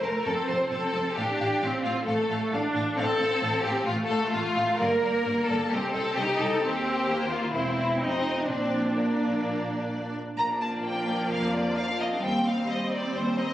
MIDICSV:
0, 0, Header, 1, 6, 480
1, 0, Start_track
1, 0, Key_signature, -2, "major"
1, 0, Tempo, 455235
1, 1232, Time_signature, 4, 2, 24, 8
1, 7953, Tempo, 473560
1, 10833, Tempo, 459418
1, 14125, End_track
2, 0, Start_track
2, 0, Title_t, "Violin section"
2, 0, Program_c, 0, 48
2, 30, Note_on_c, 0, 81, 40
2, 114, Note_off_c, 0, 81, 0
2, 272, Note_on_c, 0, 81, 38
2, 356, Note_off_c, 0, 81, 0
2, 510, Note_on_c, 0, 81, 42
2, 594, Note_off_c, 0, 81, 0
2, 759, Note_on_c, 0, 81, 45
2, 844, Note_off_c, 0, 81, 0
2, 990, Note_on_c, 0, 81, 39
2, 1075, Note_off_c, 0, 81, 0
2, 1235, Note_on_c, 0, 77, 52
2, 1319, Note_off_c, 0, 77, 0
2, 1477, Note_on_c, 0, 77, 45
2, 1561, Note_off_c, 0, 77, 0
2, 1715, Note_on_c, 0, 77, 43
2, 1800, Note_off_c, 0, 77, 0
2, 1948, Note_on_c, 0, 77, 48
2, 2033, Note_off_c, 0, 77, 0
2, 2192, Note_on_c, 0, 77, 43
2, 2276, Note_off_c, 0, 77, 0
2, 2434, Note_on_c, 0, 77, 50
2, 2518, Note_off_c, 0, 77, 0
2, 2674, Note_on_c, 0, 77, 49
2, 2758, Note_off_c, 0, 77, 0
2, 2909, Note_on_c, 0, 77, 44
2, 2993, Note_off_c, 0, 77, 0
2, 3147, Note_on_c, 0, 77, 54
2, 3232, Note_off_c, 0, 77, 0
2, 3383, Note_on_c, 0, 77, 48
2, 3467, Note_off_c, 0, 77, 0
2, 3623, Note_on_c, 0, 77, 48
2, 3708, Note_off_c, 0, 77, 0
2, 3861, Note_on_c, 0, 77, 54
2, 3946, Note_off_c, 0, 77, 0
2, 4092, Note_on_c, 0, 77, 43
2, 4177, Note_off_c, 0, 77, 0
2, 4332, Note_on_c, 0, 77, 53
2, 4417, Note_off_c, 0, 77, 0
2, 4572, Note_on_c, 0, 77, 54
2, 4656, Note_off_c, 0, 77, 0
2, 4819, Note_on_c, 0, 77, 48
2, 4903, Note_off_c, 0, 77, 0
2, 5069, Note_on_c, 0, 74, 56
2, 5154, Note_off_c, 0, 74, 0
2, 5315, Note_on_c, 0, 74, 51
2, 5399, Note_off_c, 0, 74, 0
2, 5553, Note_on_c, 0, 74, 48
2, 5637, Note_off_c, 0, 74, 0
2, 5786, Note_on_c, 0, 74, 55
2, 5871, Note_off_c, 0, 74, 0
2, 6031, Note_on_c, 0, 75, 50
2, 6115, Note_off_c, 0, 75, 0
2, 6265, Note_on_c, 0, 75, 51
2, 6349, Note_off_c, 0, 75, 0
2, 6509, Note_on_c, 0, 75, 60
2, 6594, Note_off_c, 0, 75, 0
2, 6744, Note_on_c, 0, 75, 48
2, 6829, Note_off_c, 0, 75, 0
2, 6992, Note_on_c, 0, 72, 60
2, 7915, Note_off_c, 0, 72, 0
2, 7956, Note_on_c, 0, 72, 44
2, 8176, Note_off_c, 0, 72, 0
2, 8188, Note_on_c, 0, 72, 49
2, 8269, Note_off_c, 0, 72, 0
2, 8425, Note_on_c, 0, 75, 51
2, 8899, Note_off_c, 0, 75, 0
2, 8911, Note_on_c, 0, 74, 45
2, 9375, Note_off_c, 0, 74, 0
2, 9387, Note_on_c, 0, 74, 46
2, 10600, Note_off_c, 0, 74, 0
2, 10831, Note_on_c, 0, 82, 70
2, 10914, Note_off_c, 0, 82, 0
2, 11074, Note_on_c, 0, 81, 53
2, 11158, Note_off_c, 0, 81, 0
2, 11322, Note_on_c, 0, 79, 53
2, 11797, Note_off_c, 0, 79, 0
2, 11807, Note_on_c, 0, 77, 56
2, 12042, Note_off_c, 0, 77, 0
2, 12047, Note_on_c, 0, 74, 57
2, 12280, Note_on_c, 0, 77, 70
2, 12281, Note_off_c, 0, 74, 0
2, 12523, Note_off_c, 0, 77, 0
2, 12530, Note_on_c, 0, 75, 49
2, 12647, Note_off_c, 0, 75, 0
2, 12658, Note_on_c, 0, 77, 45
2, 12762, Note_on_c, 0, 79, 66
2, 12769, Note_off_c, 0, 77, 0
2, 13001, Note_off_c, 0, 79, 0
2, 13011, Note_on_c, 0, 77, 62
2, 13246, Note_off_c, 0, 77, 0
2, 13249, Note_on_c, 0, 75, 59
2, 13483, Note_on_c, 0, 74, 65
2, 13485, Note_off_c, 0, 75, 0
2, 13716, Note_off_c, 0, 74, 0
2, 13724, Note_on_c, 0, 72, 62
2, 13960, Note_off_c, 0, 72, 0
2, 13966, Note_on_c, 0, 75, 70
2, 14125, Note_off_c, 0, 75, 0
2, 14125, End_track
3, 0, Start_track
3, 0, Title_t, "Violin section"
3, 0, Program_c, 1, 48
3, 30, Note_on_c, 1, 70, 59
3, 264, Note_on_c, 1, 69, 66
3, 272, Note_off_c, 1, 70, 0
3, 501, Note_on_c, 1, 72, 61
3, 510, Note_off_c, 1, 69, 0
3, 745, Note_on_c, 1, 69, 71
3, 748, Note_off_c, 1, 72, 0
3, 1217, Note_off_c, 1, 69, 0
3, 1226, Note_on_c, 1, 67, 68
3, 1942, Note_off_c, 1, 67, 0
3, 1942, Note_on_c, 1, 65, 55
3, 2178, Note_off_c, 1, 65, 0
3, 2182, Note_on_c, 1, 69, 62
3, 2649, Note_off_c, 1, 69, 0
3, 3123, Note_on_c, 1, 69, 85
3, 3803, Note_off_c, 1, 69, 0
3, 3837, Note_on_c, 1, 67, 75
3, 4072, Note_on_c, 1, 65, 79
3, 4083, Note_off_c, 1, 67, 0
3, 4156, Note_off_c, 1, 65, 0
3, 4305, Note_on_c, 1, 69, 80
3, 4550, Note_on_c, 1, 65, 88
3, 4552, Note_off_c, 1, 69, 0
3, 5043, Note_off_c, 1, 65, 0
3, 5054, Note_on_c, 1, 70, 84
3, 5780, Note_off_c, 1, 70, 0
3, 5780, Note_on_c, 1, 69, 79
3, 6023, Note_off_c, 1, 69, 0
3, 6023, Note_on_c, 1, 67, 73
3, 6259, Note_on_c, 1, 69, 80
3, 6264, Note_off_c, 1, 67, 0
3, 6498, Note_off_c, 1, 69, 0
3, 6502, Note_on_c, 1, 67, 86
3, 6746, Note_off_c, 1, 67, 0
3, 6746, Note_on_c, 1, 69, 76
3, 6989, Note_off_c, 1, 69, 0
3, 6989, Note_on_c, 1, 67, 72
3, 7699, Note_on_c, 1, 65, 71
3, 7712, Note_off_c, 1, 67, 0
3, 7942, Note_on_c, 1, 64, 65
3, 7949, Note_off_c, 1, 65, 0
3, 8412, Note_off_c, 1, 64, 0
3, 8416, Note_on_c, 1, 60, 75
3, 8885, Note_off_c, 1, 60, 0
3, 8897, Note_on_c, 1, 60, 62
3, 9380, Note_off_c, 1, 60, 0
3, 9385, Note_on_c, 1, 58, 50
3, 10591, Note_off_c, 1, 58, 0
3, 10840, Note_on_c, 1, 58, 37
3, 10844, Note_on_c, 1, 74, 42
3, 10951, Note_off_c, 1, 58, 0
3, 10957, Note_on_c, 1, 62, 40
3, 11076, Note_on_c, 1, 58, 38
3, 11079, Note_off_c, 1, 62, 0
3, 11199, Note_off_c, 1, 58, 0
3, 11199, Note_on_c, 1, 62, 40
3, 11314, Note_on_c, 1, 58, 37
3, 11321, Note_off_c, 1, 62, 0
3, 11431, Note_on_c, 1, 62, 38
3, 11440, Note_off_c, 1, 58, 0
3, 11559, Note_off_c, 1, 62, 0
3, 11564, Note_on_c, 1, 58, 35
3, 11684, Note_on_c, 1, 62, 34
3, 11686, Note_off_c, 1, 58, 0
3, 11806, Note_off_c, 1, 62, 0
3, 11816, Note_on_c, 1, 58, 38
3, 11923, Note_off_c, 1, 58, 0
3, 11926, Note_on_c, 1, 62, 37
3, 12039, Note_on_c, 1, 58, 35
3, 12046, Note_off_c, 1, 62, 0
3, 12152, Note_on_c, 1, 62, 39
3, 12163, Note_off_c, 1, 58, 0
3, 12279, Note_off_c, 1, 62, 0
3, 12286, Note_on_c, 1, 58, 42
3, 12406, Note_off_c, 1, 58, 0
3, 12411, Note_on_c, 1, 62, 40
3, 12528, Note_off_c, 1, 62, 0
3, 12532, Note_on_c, 1, 58, 42
3, 12648, Note_off_c, 1, 58, 0
3, 12650, Note_on_c, 1, 62, 39
3, 12726, Note_off_c, 1, 74, 0
3, 12758, Note_on_c, 1, 72, 39
3, 12760, Note_on_c, 1, 55, 40
3, 12767, Note_off_c, 1, 62, 0
3, 12873, Note_off_c, 1, 55, 0
3, 12885, Note_on_c, 1, 60, 43
3, 13003, Note_off_c, 1, 60, 0
3, 13005, Note_on_c, 1, 63, 44
3, 13123, Note_off_c, 1, 63, 0
3, 13126, Note_on_c, 1, 60, 42
3, 13239, Note_on_c, 1, 55, 43
3, 13244, Note_off_c, 1, 60, 0
3, 13360, Note_off_c, 1, 55, 0
3, 13362, Note_on_c, 1, 60, 39
3, 13482, Note_off_c, 1, 60, 0
3, 13489, Note_on_c, 1, 63, 44
3, 13605, Note_off_c, 1, 63, 0
3, 13608, Note_on_c, 1, 60, 40
3, 13724, Note_off_c, 1, 60, 0
3, 13732, Note_on_c, 1, 55, 44
3, 13837, Note_off_c, 1, 55, 0
3, 13844, Note_on_c, 1, 60, 43
3, 13958, Note_on_c, 1, 63, 41
3, 13960, Note_off_c, 1, 60, 0
3, 14076, Note_off_c, 1, 63, 0
3, 14088, Note_on_c, 1, 60, 46
3, 14125, Note_off_c, 1, 60, 0
3, 14125, Note_off_c, 1, 72, 0
3, 14125, End_track
4, 0, Start_track
4, 0, Title_t, "Viola section"
4, 0, Program_c, 2, 48
4, 0, Note_on_c, 2, 57, 45
4, 261, Note_off_c, 2, 57, 0
4, 273, Note_on_c, 2, 60, 52
4, 1231, Note_off_c, 2, 60, 0
4, 1235, Note_on_c, 2, 62, 54
4, 1699, Note_off_c, 2, 62, 0
4, 1707, Note_on_c, 2, 60, 51
4, 2185, Note_off_c, 2, 60, 0
4, 2190, Note_on_c, 2, 57, 60
4, 2653, Note_off_c, 2, 57, 0
4, 2659, Note_on_c, 2, 62, 72
4, 3134, Note_on_c, 2, 60, 58
4, 3136, Note_off_c, 2, 62, 0
4, 4086, Note_on_c, 2, 57, 64
4, 4089, Note_off_c, 2, 60, 0
4, 5041, Note_off_c, 2, 57, 0
4, 5067, Note_on_c, 2, 58, 64
4, 6027, Note_off_c, 2, 58, 0
4, 6028, Note_on_c, 2, 60, 63
4, 6507, Note_off_c, 2, 60, 0
4, 6507, Note_on_c, 2, 63, 69
4, 6991, Note_off_c, 2, 63, 0
4, 6993, Note_on_c, 2, 60, 67
4, 7463, Note_off_c, 2, 60, 0
4, 7466, Note_on_c, 2, 58, 59
4, 7949, Note_on_c, 2, 60, 52
4, 7953, Note_off_c, 2, 58, 0
4, 8415, Note_off_c, 2, 60, 0
4, 8421, Note_on_c, 2, 63, 53
4, 8902, Note_on_c, 2, 62, 53
4, 8906, Note_off_c, 2, 63, 0
4, 10559, Note_off_c, 2, 62, 0
4, 10831, Note_on_c, 2, 58, 41
4, 10833, Note_on_c, 2, 53, 40
4, 12720, Note_off_c, 2, 53, 0
4, 12720, Note_off_c, 2, 58, 0
4, 12763, Note_on_c, 2, 60, 45
4, 12765, Note_on_c, 2, 55, 43
4, 14125, Note_off_c, 2, 55, 0
4, 14125, Note_off_c, 2, 60, 0
4, 14125, End_track
5, 0, Start_track
5, 0, Title_t, "Cello section"
5, 0, Program_c, 3, 48
5, 30, Note_on_c, 3, 41, 45
5, 114, Note_off_c, 3, 41, 0
5, 272, Note_on_c, 3, 41, 50
5, 356, Note_off_c, 3, 41, 0
5, 514, Note_on_c, 3, 41, 39
5, 598, Note_off_c, 3, 41, 0
5, 753, Note_on_c, 3, 41, 49
5, 838, Note_off_c, 3, 41, 0
5, 986, Note_on_c, 3, 41, 50
5, 1071, Note_off_c, 3, 41, 0
5, 1229, Note_on_c, 3, 45, 49
5, 1313, Note_off_c, 3, 45, 0
5, 1468, Note_on_c, 3, 45, 43
5, 1552, Note_off_c, 3, 45, 0
5, 1706, Note_on_c, 3, 45, 50
5, 1791, Note_off_c, 3, 45, 0
5, 1947, Note_on_c, 3, 45, 48
5, 2031, Note_off_c, 3, 45, 0
5, 2178, Note_on_c, 3, 45, 54
5, 2263, Note_off_c, 3, 45, 0
5, 2414, Note_on_c, 3, 45, 44
5, 2499, Note_off_c, 3, 45, 0
5, 2656, Note_on_c, 3, 45, 54
5, 2740, Note_off_c, 3, 45, 0
5, 2892, Note_on_c, 3, 45, 60
5, 2977, Note_off_c, 3, 45, 0
5, 3136, Note_on_c, 3, 45, 66
5, 3220, Note_off_c, 3, 45, 0
5, 3365, Note_on_c, 3, 45, 55
5, 3449, Note_off_c, 3, 45, 0
5, 3610, Note_on_c, 3, 45, 59
5, 3694, Note_off_c, 3, 45, 0
5, 3850, Note_on_c, 3, 45, 52
5, 3934, Note_off_c, 3, 45, 0
5, 4085, Note_on_c, 3, 45, 55
5, 4170, Note_off_c, 3, 45, 0
5, 4321, Note_on_c, 3, 45, 51
5, 4405, Note_off_c, 3, 45, 0
5, 4566, Note_on_c, 3, 45, 64
5, 4651, Note_off_c, 3, 45, 0
5, 4812, Note_on_c, 3, 45, 65
5, 4896, Note_off_c, 3, 45, 0
5, 5051, Note_on_c, 3, 43, 64
5, 5136, Note_off_c, 3, 43, 0
5, 5295, Note_on_c, 3, 43, 54
5, 5379, Note_off_c, 3, 43, 0
5, 5542, Note_on_c, 3, 43, 64
5, 5626, Note_off_c, 3, 43, 0
5, 5789, Note_on_c, 3, 43, 53
5, 5873, Note_off_c, 3, 43, 0
5, 6027, Note_on_c, 3, 36, 57
5, 6111, Note_off_c, 3, 36, 0
5, 6260, Note_on_c, 3, 36, 47
5, 6344, Note_off_c, 3, 36, 0
5, 6503, Note_on_c, 3, 36, 61
5, 6588, Note_off_c, 3, 36, 0
5, 6748, Note_on_c, 3, 36, 61
5, 6832, Note_off_c, 3, 36, 0
5, 6989, Note_on_c, 3, 39, 63
5, 7913, Note_off_c, 3, 39, 0
5, 7953, Note_on_c, 3, 40, 52
5, 8425, Note_on_c, 3, 41, 51
5, 8427, Note_off_c, 3, 40, 0
5, 8898, Note_on_c, 3, 46, 45
5, 8908, Note_off_c, 3, 41, 0
5, 10623, Note_off_c, 3, 46, 0
5, 10825, Note_on_c, 3, 46, 49
5, 11236, Note_off_c, 3, 46, 0
5, 11800, Note_on_c, 3, 41, 45
5, 12202, Note_off_c, 3, 41, 0
5, 12758, Note_on_c, 3, 39, 49
5, 13158, Note_off_c, 3, 39, 0
5, 13718, Note_on_c, 3, 39, 55
5, 14115, Note_off_c, 3, 39, 0
5, 14125, End_track
6, 0, Start_track
6, 0, Title_t, "Double bass section"
6, 0, Program_c, 4, 48
6, 38, Note_on_c, 4, 29, 43
6, 122, Note_off_c, 4, 29, 0
6, 269, Note_on_c, 4, 29, 41
6, 354, Note_off_c, 4, 29, 0
6, 518, Note_on_c, 4, 29, 51
6, 602, Note_off_c, 4, 29, 0
6, 754, Note_on_c, 4, 29, 50
6, 838, Note_off_c, 4, 29, 0
6, 993, Note_on_c, 4, 29, 52
6, 1077, Note_off_c, 4, 29, 0
6, 1234, Note_on_c, 4, 33, 55
6, 1318, Note_off_c, 4, 33, 0
6, 1466, Note_on_c, 4, 33, 48
6, 1551, Note_off_c, 4, 33, 0
6, 1704, Note_on_c, 4, 33, 56
6, 1788, Note_off_c, 4, 33, 0
6, 1947, Note_on_c, 4, 33, 52
6, 2031, Note_off_c, 4, 33, 0
6, 2186, Note_on_c, 4, 33, 50
6, 2271, Note_off_c, 4, 33, 0
6, 2428, Note_on_c, 4, 33, 52
6, 2513, Note_off_c, 4, 33, 0
6, 2657, Note_on_c, 4, 33, 55
6, 2741, Note_off_c, 4, 33, 0
6, 2900, Note_on_c, 4, 33, 59
6, 2984, Note_off_c, 4, 33, 0
6, 3137, Note_on_c, 4, 33, 59
6, 3222, Note_off_c, 4, 33, 0
6, 3373, Note_on_c, 4, 33, 52
6, 3457, Note_off_c, 4, 33, 0
6, 3614, Note_on_c, 4, 33, 66
6, 3699, Note_off_c, 4, 33, 0
6, 3854, Note_on_c, 4, 33, 53
6, 3938, Note_off_c, 4, 33, 0
6, 4091, Note_on_c, 4, 33, 58
6, 4175, Note_off_c, 4, 33, 0
6, 4333, Note_on_c, 4, 33, 65
6, 4418, Note_off_c, 4, 33, 0
6, 4570, Note_on_c, 4, 33, 61
6, 4654, Note_off_c, 4, 33, 0
6, 4817, Note_on_c, 4, 33, 57
6, 4901, Note_off_c, 4, 33, 0
6, 5058, Note_on_c, 4, 31, 69
6, 5142, Note_off_c, 4, 31, 0
6, 5305, Note_on_c, 4, 31, 53
6, 5389, Note_off_c, 4, 31, 0
6, 5542, Note_on_c, 4, 31, 65
6, 5627, Note_off_c, 4, 31, 0
6, 5785, Note_on_c, 4, 31, 60
6, 5870, Note_off_c, 4, 31, 0
6, 6032, Note_on_c, 4, 36, 58
6, 6116, Note_off_c, 4, 36, 0
6, 6267, Note_on_c, 4, 36, 61
6, 6351, Note_off_c, 4, 36, 0
6, 6508, Note_on_c, 4, 36, 57
6, 6592, Note_off_c, 4, 36, 0
6, 6750, Note_on_c, 4, 36, 58
6, 6834, Note_off_c, 4, 36, 0
6, 6992, Note_on_c, 4, 39, 58
6, 7914, Note_off_c, 4, 39, 0
6, 7955, Note_on_c, 4, 28, 49
6, 8422, Note_on_c, 4, 29, 49
6, 8428, Note_off_c, 4, 28, 0
6, 8907, Note_off_c, 4, 29, 0
6, 8909, Note_on_c, 4, 34, 50
6, 10629, Note_off_c, 4, 34, 0
6, 10826, Note_on_c, 4, 34, 49
6, 11236, Note_off_c, 4, 34, 0
6, 11807, Note_on_c, 4, 29, 43
6, 12206, Note_off_c, 4, 29, 0
6, 12761, Note_on_c, 4, 39, 50
6, 13160, Note_off_c, 4, 39, 0
6, 13723, Note_on_c, 4, 39, 47
6, 14117, Note_off_c, 4, 39, 0
6, 14125, End_track
0, 0, End_of_file